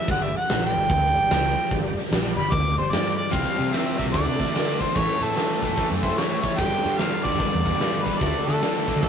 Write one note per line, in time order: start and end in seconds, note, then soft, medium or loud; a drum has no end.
0.01 snare soft
0.08 0.32 G1 medium
0.08 0.38 G3 medium
0.08 0.39 D4 medium
0.08 0.38 G4 medium
0.08 0.39 D5 medium
0.08 0.25 F#5 loud
0.08 kick loud
0.08 open hi-hat medium
0.24 0.36 E5 loud
0.36 0.63 F#5 medium
0.36 muted picked electric bass stroke soft
0.49 0.74 A#1 loud
0.49 0.88 G3 medium
0.49 0.88 D4 medium
0.49 0.89 G4 medium
0.49 0.89 A4 medium
0.49 snare loud
0.49 open hi-hat medium
0.66 1.82 G5 loud
0.75 0.89 G1 medium
0.90 1.14 D2 loud
0.90 kick loud
0.90 open hi-hat medium
1.14 1.29 G1 medium
1.14 1.52 G3 medium
1.14 1.53 D4 medium
1.14 1.53 G4 medium
1.14 1.53 D5 medium
1.30 1.54 C#2 medium
1.30 snare loud
1.30 open hi-hat medium
1.65 snare soft
1.71 1.95 G1 loud
1.71 2.01 G3 medium
1.71 2.01 D4 medium
1.71 2.01 G4 medium
1.71 2.01 D5 loud
1.71 kick loud
1.71 open hi-hat medium
1.96 muted picked electric bass stroke soft
1.96 snare soft
2.11 2.35 A#1 loud
2.11 2.51 G3 medium
2.11 2.50 D4 medium
2.11 2.51 G4 medium
2.11 2.51 D5 loud
2.11 snare loud
2.11 open hi-hat medium
2.37 2.51 G1 medium
2.37 2.54 B5 loud
2.52 2.76 D2 loud
2.52 2.77 D6 loud
2.52 kick loud
2.52 open hi-hat medium
2.76 2.92 G1 medium
2.76 3.15 G3 medium
2.76 3.15 D4 medium
2.76 3.15 G4 medium
2.76 2.93 C5 medium
2.76 3.15 D5 medium
2.91 3.31 G2 medium
2.91 3.16 D5 loud
2.91 snare loud
2.91 open hi-hat medium
3.17 3.34 D5 loud
3.27 3.86 E3 medium
3.27 3.85 C4 medium
3.27 3.85 G4 medium
3.27 snare soft
3.31 3.44 C2 medium
3.31 3.55 C3 medium
3.31 3.56 G3 medium
3.31 3.57 C4 medium
3.31 3.86 C5 medium
3.31 3.74 F5 loud
3.31 kick loud
3.31 open hi-hat medium
3.56 3.71 C3 medium
3.56 3.72 C3 medium
3.56 3.71 G3 medium
3.56 3.71 C4 medium
3.56 open hi-hat medium
3.72 3.97 C3 medium
3.72 3.97 G3 medium
3.72 3.98 C4 medium
3.72 3.98 E5 medium
3.72 snare loud
3.72 open hi-hat medium
3.98 4.13 C3 medium
3.98 4.13 G3 medium
3.98 4.13 C4 medium
3.98 4.06 E5 medium
3.98 kick medium
3.98 snare soft
3.98 open hi-hat soft
4.06 4.13 C2 medium
4.13 4.25 D2 medium
4.13 4.39 D3 medium
4.13 4.39 A3 medium
4.13 4.68 A3 medium
4.13 4.69 D4 medium
4.13 4.40 D4 loud
4.13 4.68 F#4 medium
4.13 4.68 A4 medium
4.13 4.82 D5 loud
4.13 kick loud
4.13 open hi-hat medium
4.26 4.44 C3 medium
4.40 4.54 D3 medium
4.40 4.54 A3 medium
4.40 4.54 D4 medium
4.40 kick medium
4.40 open hi-hat soft
4.55 4.79 D3 medium
4.55 4.79 A3 medium
4.55 4.79 D4 loud
4.55 snare loud
4.55 open hi-hat medium
4.80 4.94 D3 medium
4.80 4.94 A3 medium
4.80 4.95 D4 medium
4.80 4.98 C5 medium
4.80 kick medium
4.80 open hi-hat medium
4.95 5.07 A1 medium
4.95 5.19 A2 medium
4.95 5.20 E3 medium
4.95 5.50 A3 medium
4.95 5.21 A3 loud
4.95 5.50 C#4 medium
4.95 5.50 E4 medium
4.95 5.50 A4 medium
4.95 5.24 C#5 loud
4.95 kick loud
4.95 open hi-hat medium
5.20 5.34 A2 medium
5.20 5.35 E3 medium
5.20 5.35 A3 medium
5.20 5.75 A4 medium
5.20 open hi-hat medium
5.35 5.61 A2 medium
5.35 5.61 E3 loud
5.35 5.61 A3 medium
5.35 snare loud
5.35 open hi-hat medium
5.62 5.76 A2 medium
5.62 5.78 E3 medium
5.62 5.78 A3 loud
5.62 kick medium
5.62 open hi-hat medium
5.69 5.76 A2 medium
5.76 6.01 A2 medium
5.76 6.03 E3 loud
5.76 6.32 A3 medium
5.76 6.03 A3 medium
5.76 6.32 C#4 medium
5.76 6.31 E4 medium
5.76 5.88 A4 loud
5.76 6.32 A4 medium
5.76 kick loud
5.76 open hi-hat medium
5.91 6.08 F#2 medium
6.03 6.17 A2 medium
6.03 6.17 E3 medium
6.03 6.18 A3 medium
6.03 6.20 C5 medium
6.03 kick medium
6.03 open hi-hat medium
6.18 6.41 A2 medium
6.18 6.42 E3 medium
6.18 6.42 A3 loud
6.18 6.41 C#5 medium
6.18 snare loud
6.18 open hi-hat medium
6.42 6.57 A2 medium
6.42 6.57 E3 medium
6.42 6.58 A3 medium
6.42 6.59 C#5 medium
6.42 kick medium
6.42 open hi-hat soft
6.57 6.70 G1 medium
6.57 6.83 G2 medium
6.57 6.83 D3 medium
6.57 6.84 G3 loud
6.57 7.13 B3 medium
6.57 7.13 D4 medium
6.57 7.14 G4 medium
6.57 7.14 B4 medium
6.57 7.00 G5 loud
6.57 kick loud
6.57 open hi-hat medium
6.84 6.98 G2 medium
6.84 6.99 D3 medium
6.84 6.99 G3 medium
6.84 open hi-hat medium
6.98 7.23 G2 medium
6.98 7.24 D3 medium
6.98 7.24 G3 loud
6.98 7.26 F5 loud
6.98 snare loud
6.98 open hi-hat medium
7.24 7.38 G2 medium
7.24 7.38 D3 medium
7.24 7.38 G3 medium
7.24 8.04 D5 loud
7.24 kick medium
7.24 open hi-hat soft
7.33 7.39 G2 medium
7.39 7.65 G2 medium
7.39 7.65 D3 loud
7.39 7.66 G3 loud
7.39 7.94 B3 medium
7.39 7.94 D4 medium
7.39 7.95 G4 medium
7.39 7.94 D5 medium
7.39 kick loud
7.39 open hi-hat medium
7.54 7.71 E2 medium
7.65 7.79 G2 medium
7.65 7.79 D3 medium
7.65 7.80 G3 medium
7.65 kick medium
7.65 open hi-hat medium
7.80 8.05 G2 medium
7.80 8.05 D3 loud
7.80 8.06 G3 loud
7.80 snare loud
7.80 open hi-hat medium
8.03 8.20 G2 medium
8.03 8.20 D3 medium
8.03 8.19 B4 medium
8.03 kick medium
8.03 open hi-hat medium
8.07 8.21 G3 medium
8.18 8.32 D2 medium
8.18 8.47 D3 medium
8.18 8.48 A3 medium
8.18 8.45 D5 loud
8.18 kick loud
8.18 open hi-hat medium
8.22 8.76 A3 medium
8.22 8.76 D4 medium
8.22 8.48 D4 loud
8.22 8.76 F#4 medium
8.22 8.76 A4 medium
8.45 8.60 D3 medium
8.45 8.61 A3 medium
8.45 8.98 A4 medium
8.45 open hi-hat medium
8.49 8.61 D4 medium
8.62 8.86 D3 medium
8.62 8.87 A3 loud
8.62 8.87 D4 loud
8.62 snare loud
8.62 open hi-hat medium
8.87 9.01 D3 medium
8.87 9.02 A3 medium
8.87 9.02 D4 medium
8.87 kick medium
8.87 open hi-hat medium
8.96 9.02 D3 medium
9.01 9.09 D3 medium
9.01 9.09 A3 medium
9.01 9.09 D4 medium
9.01 9.09 F#4 medium
9.01 9.09 A4 medium
9.01 kick loud
9.01 open hi-hat medium